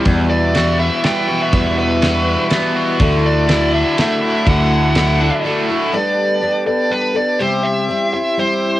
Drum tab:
RD |x-x-x-|x-x-x-|x-x-x-|x-x---|
SD |--o-o-|--o-o-|--o-o-|--o---|
BD |o-----|o-----|o-----|o-----|

RD |------|------|
SD |------|------|
BD |------|------|